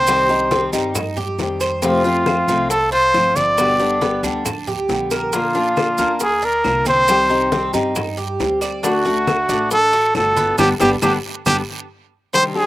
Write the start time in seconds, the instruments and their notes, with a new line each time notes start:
Already playing: upright bass C2, cuban tres C4, trumpet C5
0.07 nylon-string guitar C3 D#3 G3 C4 G4, high bongo, high conga, long guiro, claves, maracas
0.29 nylon-string guitar D#3 G3 C4 G4, cuban tres D#4, high bongo, high conga, maracas
0.51 nylon-string guitar D#3 G3 C4 G4, cuban tres C4, high bongo, high conga, short guiro, maracas
0.73 upright bass G2, nylon-string guitar D#3 G3 C4 G4, cuban tres D#4, high bongo, high conga, short guiro, maracas
0.95 muted nylon-string guitar stroke, high bongo, high conga, low conga, long guiro, claves, maracas
1.17 cuban tres G4, high conga, low conga, maracas
1.39 upright bass F2, nylon-string guitar D#3 G3 C4 G4, high bongo, low bongo, high conga, short guiro, maracas
1.60 cuban tres C5, high bongo, high conga, short guiro, claves, maracas
1.82 nylon-string guitar C3 F3 A3 C4 F4, cuban tres C4, trumpet F4, high bongo, high conga, long guiro, maracas
2.04 nylon-string guitar F3 A3 C4 F4, cuban tres F4, high bongo, high conga, maracas
2.26 nylon-string guitar F3 A3 C4 F4, high bongo, high conga, short guiro, claves, maracas
2.48 upright bass C2, nylon-string guitar F3 A3 C4 F4, cuban tres C4, high bongo, high conga, short guiro, maracas
2.70 trumpet A4, muted nylon-string guitar stroke, high bongo, high conga, long guiro, maracas
2.92 cuban tres F4, trumpet C5, high conga, maracas
3.14 upright bass G1, nylon-string guitar F3 A3 C4 F4, high bongo, low bongo, high conga, short guiro, claves, maracas
3.36 trumpet D5, high bongo, high conga, short guiro, maracas
3.57 nylon-string guitar B2 D3 G3 B3 G4, high bongo, high conga, long guiro, claves, maracas
3.79 nylon-string guitar D3 G3 B3 G4, cuban tres D4, high bongo, high conga, maracas
4.01 nylon-string guitar D3 G3 B3 G4, cuban tres B3, high bongo, high conga, short guiro, maracas
4.23 upright bass D2, nylon-string guitar D3 G3 B3 G4, cuban tres D4, high bongo, high conga, short guiro, maracas
4.45 muted nylon-string guitar stroke, high bongo, high conga, low conga, long guiro, claves, maracas
4.67 cuban tres G4, high conga, low conga, maracas
4.89 upright bass A#1, nylon-string guitar D3 G3 B3 G4, high bongo, low bongo, high conga, short guiro, maracas
5.11 cuban tres A#4, high bongo, high conga, short guiro, claves, maracas
5.33 nylon-string guitar D3 A#3 D4 F4, cuban tres A#3, trumpet F4, high bongo, high conga, long guiro, maracas
5.55 nylon-string guitar A#3 D4 F4, cuban tres D4, high bongo, high conga, maracas
5.76 nylon-string guitar D3 A#3 D4 F4, high bongo, high conga, short guiro, claves, maracas
5.98 upright bass D2, cuban tres A#3, nylon-string guitar A#3 D4 F4, high bongo, high conga, short guiro, maracas
6.20 trumpet G#4, muted nylon-string guitar stroke, high bongo, high conga, long guiro, maracas
6.42 cuban tres D4, trumpet A#4, high conga, maracas
6.64 upright bass C2, nylon-string guitar D3 A#3 D4 F4, high bongo, low bongo, high conga, short guiro, claves, maracas
6.86 cuban tres C4, trumpet C5, high bongo, high conga, short guiro, maracas
7.08 nylon-string guitar C3 D#3 G3 C4 G4, high bongo, high conga, long guiro, claves, maracas
7.29 nylon-string guitar D#3 G3 C4 G4, cuban tres D#4, high bongo, high conga, maracas
7.52 nylon-string guitar D#3 G3 C4 G4, cuban tres C4, high bongo, high conga, short guiro, maracas
7.74 upright bass G2, nylon-string guitar D#3 G3 C4 G4, cuban tres D#4, high bongo, high conga, short guiro, maracas
7.96 muted nylon-string guitar stroke, high bongo, high conga, low conga, long guiro, claves, maracas
8.17 cuban tres G4, high conga, maracas
8.40 upright bass D2, nylon-string guitar G3 C4 G4, high bongo, low bongo, high conga, short guiro, maracas
8.61 cuban tres D5, high bongo, high conga, short guiro, claves, maracas
8.83 nylon-string guitar D3 A3 D4 F#4, cuban tres D4, trumpet F#4, high bongo, high conga, long guiro, maracas
9.05 nylon-string guitar A3 D4 F#4, cuban tres F#4, high bongo, high conga, maracas
9.27 nylon-string guitar D3 A3 D4 F#4, high bongo, high conga, short guiro, claves, maracas
9.49 upright bass A1, nylon-string guitar A3 D4 F#4, cuban tres D4, high bongo, high conga, short guiro, maracas
9.71 trumpet A4, muted nylon-string guitar stroke, high bongo, high conga, long guiro, maracas
9.92 cuban tres F#4, high conga, maracas
10.15 upright bass G1, nylon-string guitar D3 A3 D4 F#4, trumpet A4, high bongo, low bongo, high conga, short guiro, claves, maracas
10.37 cuban tres B3, high bongo, high conga, short guiro, maracas
10.58 upright bass G1, nylon-string guitar D3 G3 B3, cuban tres B3 D4 G4, trumpet G4, low bongo, high conga, long guiro, claves, maracas
10.80 upright bass G1, nylon-string guitar D3 G3 B3, cuban tres B3 D4 G4, trumpet G4, low bongo, high conga, long guiro, claves, maracas
11.02 upright bass G1, nylon-string guitar D3 G3 B3, cuban tres B3 D4 G4, trumpet G4, low bongo, high conga, long guiro, claves, maracas
11.46 upright bass G1, nylon-string guitar D3 G3 B3, cuban tres B3 D4 G4, trumpet G4, low bongo, high conga, long guiro, claves, maracas
12.33 nylon-string guitar C3 D#3 G3 D4 G4, cuban tres C4, trumpet C5, high bongo, high conga, long guiro, maracas
12.55 nylon-string guitar D#3 G3 D4 G4, trumpet G#4, high bongo, high conga